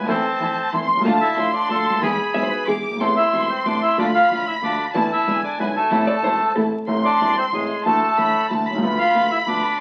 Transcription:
0.00 D2
0.05 D#2 E2 E3 A3 C4 E4 A4 A5
0.09 C4 C5
0.39 E2 E3 A3 C4 E4 A4
0.72 E2 E3 A3 C4 E4 A4 C6
0.93 B1 C2
1.01 C#2 D2 F3 A3 D4 A5
1.05 D3 D4 F4 A4
1.21 E4 E5
1.37 A1 A2 F3 A3 D4 F4 A4 C6
1.53 D4 D5
1.68 D2 D3 F3 A3 D4 F4 A4 A5
1.90 C#2
1.94 D2 D#2
2.02 E2 E3 G#3 B3 E4 G#4 G#5 B5
2.34 B1 B2 E3 G#3 B3 E4 G#4 E5 B5
2.43 C5
2.51 B4
2.67 E2 E3 G#3 B3 E4 G#4 D6
2.88 F#1
2.92 G1
2.96 G#1 B3
3.00 A1 A2 C3 A3 B3 C4 E4 A4 C6
3.17 E4 E5
3.33 E1 E2 C3 A3 B3 C4 E4 A4
3.50 C4 C5
3.65 A1 A2 C3 A3 B3 C4 D4 E4 A4 D5
3.82 E4 E5
3.97 D2 D3 F3 A3 D4 F4 D5 B5
4.14 F4 F5
4.30 A1 A2 D3 F3 A3 D4 F4 F5
4.47 E4 E5
4.62 D2 D3 F3 A3 D4 F4 D5
4.94 E2 D3 E3 A3 B3 D4 E4 A5
5.12 E4 E5
5.26 E2 D3 E3 G#3 B3 D4 E4 G#5
5.44 D4 D5
5.58 B1 B2 D3 G#3 B3 D4 E4 B4
5.76 A3 A4
5.90 A1 A2 C3 E3 A3 C4 E4 A5
6.07 D5
6.22 E1 E2 C3 E3 A3 C4 E4 C5
6.55 A1 A2 C3 E3 A3 C4 E4 A4
6.87 A1 A2 C3 E3 A3 E4 C6
7.05 D4 D5
7.21 E1 E2 C3 E3 A3 E4
7.38 C4 C5
7.52 A1 A2 C3 E3 G#3 A3 E4 G#4
7.86 D2 D3 E3 A3 E4 A4 A5
8.18 A1 A2 D3 E3 A3 E4 B5
8.50 D2 D3 E3 A3 E4 A5
8.66 B5
8.70 B1
8.74 C2 C#2
8.82 D2 D3 F3 B3 F4 B5
8.98 F4 F5
9.14 D2 D3 F3 B3 F4
9.31 E4 E5
9.46 D2 D3 F3 B3 D4 F4 D5

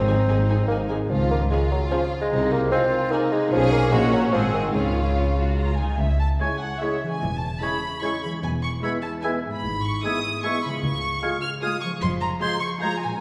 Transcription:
Already playing: G#1 G#2 C4 D#4
0.07 D#3 D#4 G#4 G#5
0.27 G#1 G#2 G#3 D#4 G#4 G#5
0.48 D#4 G#4 G#5
0.68 G#1 G#2 A#3 D#4 G#4 G#5
0.89 G#3 D#4 G#4 G#5
1.09 C#2 C#3 F3 F4
1.31 G#3 A#3
1.50 G#3 C#4 F4 G#4 G#5
1.70 F#3 G#4
1.91 F3 C#4 G#4 G#5
2.11 G#4
2.21 G#3
2.31 C2 C3 D#4
2.51 A#3 C4
2.71 G#3 C4 D#4 F4 G#4 G#5
2.92 D#4
3.11 A#3 D#4 G#4 G#5
3.32 G#3 D#4
3.52 B1 B2 F3 C#4 G#4 G#5
3.72 A#3 C#4 G#4
3.92 A#1 A#2 G#3 C#4 F#4 C#5 F#5
4.12 F#3 C#4 A#4
4.32 G#1 G#2 F3 C4 G#4 F#5
4.54 D#3 C4 F#4
4.74 C#2 C#3 C#4 F4 G#4 F5
4.95 G#3
5.16 C#4
5.37 F4 F#4
5.57 F4 G#4 A#5
5.77 D#4 F4 G#5
5.82 C#3
5.86 G#3
5.91 C#4
5.95 G#4 E5
6.00 C#2
6.20 A5
6.40 G#3 C#4 E4 G#4 C#5 G#5 G#6
6.61 F#5
6.81 G#3 C#4 E4 G#4 C#5 E5 G#6
7.03 E3
7.08 G#3 G#5
7.12 C#4
7.17 G#4
7.22 E1 E2
7.41 A5
7.61 G#3 C#4 E4 G#4 C#5 B5 G#6
8.02 G#3 C#4 E4 G#4 C#5 C#6 G#6
8.23 E3 B5
8.29 G#3
8.33 E4
8.38 G#4
8.43 E1 E2 G#5
8.63 C#6
8.83 G#3 B3 E4 G#4 B4 E5 B5 G#6
9.03 A5
9.23 G#3 B3 E4 G#4 B4 E5 G#5 G#6
9.46 G#2
9.50 G#3 B5
9.55 E4
9.59 G#4
9.65 G#1 G#2
9.84 C#6
10.04 G#3 B3 E4 G#4 B4 E5 D#6 G#6
10.43 G#3 B3 E4 G#4 B4 E5 C#6 G#6
10.64 C#3 B5
10.69 G#3
10.74 F4
10.78 G#4 C#6
10.83 C#2
11.22 G#3 F4 G#4 F5 G#6
11.42 F6
11.62 G#3 F4 G#4 F5 D#6 G#6
11.81 F3 C#6
11.89 G#3
11.93 F4
11.98 G#4 C6
12.02 F1 F2
12.21 A#5
12.41 G#3 F4 G#4 C5 F5 C6 G#6
12.61 C#6
12.81 G#3 F4 G#4 C5 F5 A#5 G#6
13.02 A#2 G#5
13.08 G#3
13.13 C#4
13.17 A#4

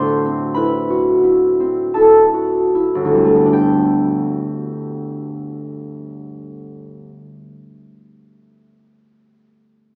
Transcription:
Already playing: D2 A2 A3 B3 E4 F#4 B4 C5 D5 E5 F#5 C6 D6 E6 F#6
0.26 C4
0.54 E4 B4 B5
0.90 F#4
1.24 E4
1.60 C4
1.94 E4 A4 A5
2.34 F#4
2.75 E4
2.95 G1
3.05 D2
3.14 G3 C4
3.25 A3
3.35 B3
3.46 D4
3.53 G5

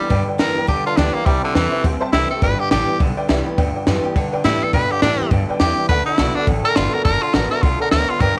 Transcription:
Already playing: G3
0.00 B3
0.09 G2 D3 B4 D5 G5, kick, open hi-hat
0.28 B4 D5 G5
0.38 F#2 G2 D3 E3 G3 B3 G4 A#4 B4 D5 G5, snare, open hi-hat
0.55 B3 G4 B4 D5 G5, muted upright bass stroke
0.67 E2 G2 D3 G4 B4 D5 A5, kick, open hi-hat
0.86 F4 B4 D5 A5
0.97 D2 G2 D3 E3 G3 B3 D4 G4 B4 D5 G5, snare, open hi-hat
1.14 A#3 B3 G4 B4 D5 G5, muted upright bass stroke
1.25 C2 C3 G3 C5 E5 G5, kick, open hi-hat
1.43 D3 C5 E5 A5
1.54 E2 C3 E3 G3 A3 C4 E4 C5 E5 G5, snare, open hi-hat
1.71 C4 E4 C5 E5 G5, muted upright bass stroke
1.83 D2 G2 C3 G3 C5 E5 F#5, kick, open hi-hat
2.00 C5 E5 A5
2.12 C2 C3 E3 G3 A3 C4 E4 E5 G5, snare, open hi-hat
2.30 C4 E4 A4 C5 E5 G5
2.41 G1 G2 D3 B4 D5 G5, kick, open hi-hat
2.58 G4 B4 D5 G5
2.70 A1 G2 D3 E3 G3 B3 G4 B4 D5 G5, snare, open hi-hat
2.87 B3 G4 B4 D5 G5
2.99 B1 G2 D3 B4 D5 G5, kick, open hi-hat
3.17 B4 D5 E5 G5, muted upright bass stroke
3.28 C2 G2 D3 E3 G3 B3 G4 B4 D5 E5 G5, snare, open hi-hat
3.45 B3 G4 B4 D5 G5 B5
3.57 D2 G2 D3 B4 D5 G5, kick, open hi-hat
3.75 B4 D5 G5
3.86 F#2 G2 D3 E3 G3 B3 G4 B4 D5 G5, snare, open hi-hat
4.04 B3 G4 B4 D5 G5, muted upright bass stroke
4.15 G2 D3 B4 D5 G5, kick, open hi-hat
4.32 B4 D5 G5, muted upright bass stroke
4.44 G2 A2 D3 E3 G3 B3 E4 G4 B4 G5, snare, open hi-hat
4.62 B3 G4 A4 B4 D5 G5, muted upright bass stroke
4.73 G2 B2 D3 B4 D5 G5, kick, open hi-hat
4.90 G4 B4 D5 F#5, muted upright bass stroke
5.02 G2 A2 D3 E3 G3 B3 D4 G4 B4 D5 G5, snare, open hi-hat
5.20 B3 G4 B4 D5 G5, muted upright bass stroke
5.31 G2 B2 D3 B4 D5 G5, kick, open hi-hat
5.49 B4 D5 G5, muted upright bass stroke
5.60 E2 G2 C3 E3 G4 B4 G5, snare, open hi-hat
5.77 B4 D5 G5, muted upright bass stroke
5.89 D2 D3 A3 A4 B4 D5 F#5, kick, open hi-hat
6.06 E4 A4 D5 F#5, muted upright bass stroke
6.18 B1 D3 A3 B3 D4 F#4 A4 D5 A5, snare, open hi-hat
6.35 D4 A4 D5 F#5
6.47 A1 A2 D3 A3 A4 D5 F#5, kick, open hi-hat
6.63 A4 A#4 D5 A5
6.75 G1 D3 A3 B3 D4 F4 F#4 A4 D5 A5, snare, open hi-hat
6.93 D4 F#4 A4 A#4 D5 F#5
7.04 F#1 D3 A3 A4 A#4 D5 A5, kick, open hi-hat
7.22 F4 A4 D5 F#5
7.33 A1 D3 A3 B3 D4 F#4 A4 A#4 D5 F#5, snare, open hi-hat
7.51 D4 F#4 A4 A#4 D5 E5
7.62 C2 B2 D3 A3 F4 A4 D5 F#5, kick, open hi-hat
7.80 A4 A#4 D5 F#5
7.91 D2 A2 D3 B3 A4 A#4 D5 E5, snare, open hi-hat
8.09 F4 A4 D5 F#5
8.20 G2 D3 A#4 B4 D5 G5, kick, open hi-hat

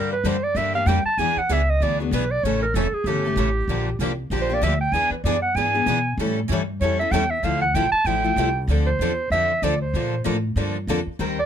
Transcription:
Already playing: G2 D3 G3 A#3 D4 G4 A#4
0.12 B4
0.24 F#2 D3 G3 A#3 D4 G4 C5
0.43 D5
0.55 G2 D3 G3 A#3 D4 G4 E5
0.75 A#3 D4 G4 F5
0.86 F2 D3 G3 A#3 D4 G4 G5
1.05 A5, muted upright bass stroke
1.17 E2 E3 B3 D4 G#4 B4 G#5
1.36 F#5, muted upright bass stroke
1.49 C#2 E3 B3 D4 G#4 B4 E5
1.70 D#5
1.80 D2 E3 B3 D4 G#4 B4 D5
2.00 B3 D4 F#4 G#4
2.11 B1 E3 B3 D4 G#4 B4
2.31 D5
2.43 A1 C#3 E3 A3 C#4 E4 A4 C#5
2.62 A#4
2.74 F1 C#3 E3 A3 C#4 E4 A4
2.92 G#4, muted upright bass stroke
3.04 G1 C#3 E3 A3 C#4 E4 G4
3.08 A4
3.25 A3 C#4 A4
3.36 A1 C#3 E3 A3 C#4 E4 A4
3.68 A#1 D3 F3 A#3 D4 G4
3.99 C2 D3 F3 A#3 D4 G4
4.30 A#1 D3 F3 A#3 D4 G4
4.41 C5
4.50 A#3 D4 G4
4.54 D5
4.62 D2 D3 F3 A#3 D4 G4 E5
4.81 G5
4.92 E2 E3 B3 D4 G#4 B4 G#5
5.10 B4, muted upright bass stroke
5.24 F#2 E3 B3 D4 G#4 B4 D5
5.42 F#5
5.55 G#2 E3 B3 D4 G#4 B4 G#5
5.75 B3 D4 G#4
5.86 B2 E3 B3 D4 G#4 B4
6.17 A2 E3 G3 C#4 E4 A4
6.48 G2 E3 G3
6.52 E3 C#4 E4 A4
6.81 F2 E3 G3 C#4 E4 A4 C#5
6.99 C#4 E4 A4 E5
7.11 E2 E3 G3 C#4 E4 A4 G5
7.30 E5
7.43 D2 D3 F3 A3 E4 A4 F5
7.61 F#5
7.74 A#1 D3 F3 A3 E4 A4 G5
7.92 A5, muted upright bass stroke
8.04 A1 D3 F3 A3 E4 A4 G5
8.24 F3 A3 E4
8.36 C2 D3 F3 A3 E4 A4
8.67 D2 D3 F3 C4 D4
8.72 A4
8.86 C5
8.99 E2 D3 F3 C4 D4 A4
9.30 F2 D3 F3 C4 D4 A4 E5
9.62 D2 D3 F3 C4 D4 A4 D5
9.82 C5
9.94 A#2 D3 F3 A#3 D4 A4
10.25 A2 D3 F3 A#3 D4 A4
10.56 G2 D3 F3 A#3 D4 A4
10.87 F2 D3 F3 A#3 D4 A4
11.06 muted upright bass stroke
11.19 D#2 D#3 G3 C4 G4 A#4
11.39 D5

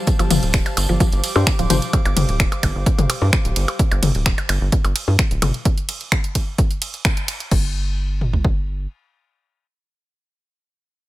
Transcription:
Already playing: G3 G4 C5 F5 A5
0.07 kick, closed hi-hat, tambourine
0.19 G1 F3, closed hi-hat, tambourine, percussion blips
0.30 G1 F3, closed hi-hat, mid tom, ride, tambourine
0.43 D1, closed hi-hat, tambourine
0.53 finger snap, kick, closed hi-hat, tambourine
0.66 D6, closed hi-hat, tambourine, percussion blips
0.77 G1, closed hi-hat, ride, tambourine, percussion blips
0.89 G1 F3, tambourine
1.00 F3, kick, closed hi-hat, tambourine
1.12 G1, closed hi-hat, tambourine
1.24 closed hi-hat, ride, tambourine
1.36 G2 D4 G4 C5, tambourine, percussion blips
1.47 finger snap, kick, closed hi-hat, tambourine
1.59 D1 F3, closed hi-hat, tambourine
1.70 G1 F3 D4 G4 C5, closed hi-hat, mid tom, ride, tambourine, percussion blips
1.82 closed hi-hat, tambourine
1.93 kick, closed hi-hat, percussion blips
2.05 G1, closed hi-hat, percussion blips
2.17 G1, closed hi-hat, mid tom, ride
2.29 D1, closed hi-hat
2.40 finger snap, kick, closed hi-hat
2.52 closed hi-hat, percussion blips
2.63 G1, kick, closed hi-hat, ride, percussion blips
2.75 G1
2.86 kick, closed hi-hat
2.98 G1, closed hi-hat, mid tom, percussion blips
3.10 closed hi-hat, ride, percussion blips
3.22 G2, percussion blips
3.33 finger snap, kick, closed hi-hat
3.45 D1, closed hi-hat
3.56 G1, closed hi-hat, ride
3.68 closed hi-hat, percussion blips
3.79 kick, closed hi-hat
3.91 G1, closed hi-hat, percussion blips
4.03 G1, closed hi-hat, mid tom, ride
4.15 D1, closed hi-hat
4.26 finger snap, kick, closed hi-hat, percussion blips
4.38 closed hi-hat, percussion blips
4.49 G1, closed hi-hat, ride, percussion blips
4.61 G1
4.72 kick, closed hi-hat
4.85 G1, closed hi-hat, percussion blips
4.96 closed hi-hat, ride
5.08 G2, percussion blips
5.19 finger snap, kick, closed hi-hat
5.31 D1, closed hi-hat
5.42 G1, closed hi-hat, mid tom, ride, percussion blips
5.54 closed hi-hat
5.65 kick, closed hi-hat
5.78 closed hi-hat
5.89 closed hi-hat, ride
6.01 closed hi-hat
6.12 finger snap, kick, closed hi-hat
6.24 closed hi-hat
6.35 kick, closed hi-hat, ride
6.58 kick, closed hi-hat
6.71 closed hi-hat
6.82 closed hi-hat, ride
6.94 closed hi-hat
7.05 finger snap, kick, closed hi-hat
7.17 closed hi-hat
7.28 closed hi-hat, ride
7.40 closed hi-hat
7.51 G1, kick, crash
8.21 mid tom
8.33 floor tom
8.45 kick

